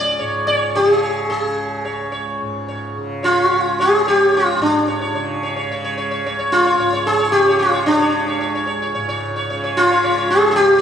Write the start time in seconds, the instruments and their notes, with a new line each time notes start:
Already playing: tanpura C#2 G#2 C#3, sitar D5
0.19 tanpura G#2, sitar C#5
0.47 sitar C#5
0.75 tanpura C#3, sitar G4
0.89 sitar G#4
1.03 sitar C#5
1.30 tanpura C#3, sitar G#4
1.85 tanpura C#2, sitar C#5
2.12 sitar C#5
2.42 tanpura G#2
2.68 sitar C#5
2.97 tanpura C#3
3.23 sitar F4 C#5
3.51 tanpura C#3, sitar C#5
3.79 sitar G#4 C#5
4.06 tanpura C#2, sitar G4 C#5
4.34 sitar F4 C#5
4.55 sitar F4
4.59 tanpura G#2, sitar D4
4.88 sitar C#5
5.01 sitar C#5
5.14 tanpura C#3, sitar C#5
5.43 sitar C#5
5.56 sitar C#5
5.69 tanpura C#3, sitar C#5
5.84 sitar C#5
5.97 sitar C#5
6.11 sitar C#5
6.24 tanpura C#2, sitar C#5
6.39 sitar C#5
6.52 sitar F4
6.66 sitar C#5
6.78 tanpura G#2, sitar C#5
6.93 sitar C#5
7.07 sitar G#4
7.19 sitar C#5
7.32 tanpura C#3, sitar G4
7.48 sitar C#5
7.59 sitar F4
7.73 sitar C#5
7.86 tanpura C#3, sitar D4
8.01 sitar C#5
8.28 sitar C#5
8.41 tanpura C#2, sitar C#5
8.55 sitar C#5
8.67 sitar C#5
8.82 sitar C#5
8.95 tanpura G#2, sitar C#5
9.09 sitar C#5
9.36 sitar C#5
9.50 tanpura C#3, sitar C#5
9.64 sitar C#5
9.77 sitar F4
9.91 sitar C#5
10.04 tanpura C#3, sitar C#5
10.18 sitar C#5
10.30 sitar G#4
10.51 sitar G#4
10.56 tanpura C#2, sitar G4
10.78 sitar G4